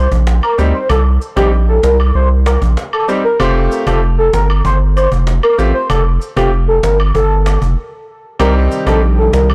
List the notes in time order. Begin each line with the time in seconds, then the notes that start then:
0.12 A#1, cajon bass
0.27 cajon slap
0.43 A#4, high woodblock
0.58 D2 G3 C4 D#4 G4, cabasa
0.74 C5
0.89 C2 A4, cajon bass, high woodblock
1.22 cabasa
1.36 A#1 G3 C4 D#4 G4, cajon bass, high woodblock
1.52 cajon slap
1.68 A4
1.83 C2 A#4, cajon bass, cajon slap, cabasa
2.00 high woodblock
2.15 C2 C5, cajon slap
2.46 A#4, cajon slap, cabasa, high woodblock
2.62 A#1, cajon bass
2.77 cajon slap
2.93 A4, high woodblock
3.08 G3 C4 D#4 G4, cabasa
3.24 A#4
3.40 F1 A3 C4 F4 G4 C5, cajon bass, high woodblock
3.72 cabasa
3.86 F1 A3 C4 F4 G4 A4, cajon bass, high woodblock
4.02 cajon slap
4.18 A4
4.33 G1 A#4, cajon bass, cajon slap, cabasa
4.50 high woodblock
4.65 G1 C5, cajon bass
4.96 C5, cabasa, high woodblock
5.12 F1, cajon bass
5.27 cajon slap
5.43 A#4, high woodblock
5.58 A1 A3 C4 F4 G4, cabasa
5.74 C5
5.90 F1 A4, cajon bass, high woodblock
6.22 cabasa
6.36 F1 A3 C4 F4 G4, cajon bass, high woodblock
6.52 cajon slap
6.68 A4
6.83 G1 A#4, cajon bass, cajon slap, cabasa
7.00 high woodblock
7.15 G1 A4, cajon bass
7.46 cajon slap, cabasa, high woodblock
7.62 F1, cajon bass
8.39 C2 C3 D#3 G3 C4 D#4 G4 A#4, cajon bass, high woodblock
8.71 cabasa
8.86 A#1 G3 C4 D#4 G4 A4, cajon bass, high woodblock
9.02 cajon slap
9.18 A4
9.33 C2 A#4, cajon bass, cajon slap, cabasa
9.50 high woodblock